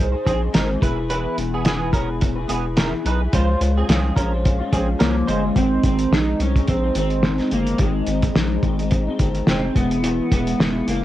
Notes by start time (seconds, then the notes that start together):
Already playing: C2 D#4 G#4 C5
0.12 D#4 G#4 C5
0.25 A#1 C4 D#4 G#4 C5, kick, closed hi-hat
0.53 G#1 G#3 C4 D#4 G#4 A#4 C5, snare, closed hi-hat
0.81 E1 B3 E4 G#4 B4, kick, closed hi-hat
0.96 E4 G#4 B4
1.10 E3 B3 E4 G#4 B4, closed hi-hat
1.38 E1, closed hi-hat
1.54 B3 G#4
1.65 E3 B3 E4 G#4 B4, snare, closed hi-hat
1.93 B3 C#4 E4 G#4 A#4 B4, kick, closed hi-hat
2.21 kick, closed hi-hat
2.36 E4 G#4 B4
2.48 E1 B3 E4 G#4 B4, closed hi-hat
2.76 E3 B3 E4 G#4 A#4 B4, snare, closed hi-hat
3.04 B1 B3 D#4 E4 G#4 B4, closed hi-hat
3.20 E4 G#4 B4
3.32 C#2 C#3 F3 G#3 C#4 F4 C5, kick, closed hi-hat
3.49 G#3 C#4 F4 C5
3.61 C#2, closed hi-hat
3.77 C4 G#4
3.88 C2 C#3 F3 G#3 C4 C#4 F4 G#4 C5, snare, closed hi-hat
4.16 A#1 G#3 C#4 F4 A#4 C5, kick, closed hi-hat
4.32 G#3 C#4 F4 C5
4.45 kick, closed hi-hat
4.58 G#3 C#4 F4 C5
4.71 A#1 G#3 C4 C#4 F4 G#4 C5, kick, closed hi-hat
4.99 C2 C#3 F3 G#3 A#3 C#4 F4 A#4 C5, snare, closed hi-hat
5.27 G1 G#3 C#4 D#4 F4 C5, closed hi-hat
5.43 G#3 C#4 F4 C5
5.56 G#1 G#2 D#3 G#3 C4 D#4, kick, closed hi-hat
5.84 G#1 D#3 G#3 C4 D#4, kick, closed hi-hat
5.99 closed hi-hat
6.12 A#1 G#2 D#3 G#3 C4 D#4, snare
6.40 C2 D#3 G#3 C4 C#4 D#4, closed hi-hat
6.55 G#3 C4 D#4, kick, closed hi-hat
6.67 A#1 C4, kick, closed hi-hat
6.84 G#3 C4 D#4
6.95 G#1 D#3 G#3 C4, closed hi-hat
7.00 D#4
7.10 closed hi-hat
7.23 G#2 D#3 G#3 C4 D#4, snare
7.38 C4 D#4, snare, closed hi-hat
7.42 G#3
7.51 G1 D#3 G#3 A#3 C4 D#4, closed hi-hat
7.66 closed hi-hat
7.78 G#1 G#2 D#3 G#3 C4 D#4, kick, closed hi-hat
8.07 G#1 D#3 G#3 C4, closed hi-hat
8.11 D#4
8.22 kick, closed hi-hat
8.35 A#1 G#2 D#3 G#3 C4 D#4, snare
8.63 G#1 D#3 G#3 C4 D#4, kick, closed hi-hat
8.79 G#3 C4 D#4, closed hi-hat
8.91 kick, closed hi-hat
9.06 G#3 C4 D#4
9.19 G1 D#3 G#3 C4 D#4, kick, closed hi-hat
9.35 closed hi-hat
9.47 F1 G#2 D#3 G#3 C4 D#4, snare
9.62 G#3 C4 D#4
9.74 E1 E3 G#3 B3 E4, kick, closed hi-hat
9.91 closed hi-hat
10.03 E3 G#3 B3 E4, closed hi-hat
10.31 E1 E3 G#3 B3 E4, kick, closed hi-hat
10.47 closed hi-hat
10.59 E1 E3 G#3 B3 E4, snare
10.86 F#1 E3 G#3 A#3 B3 E4, closed hi-hat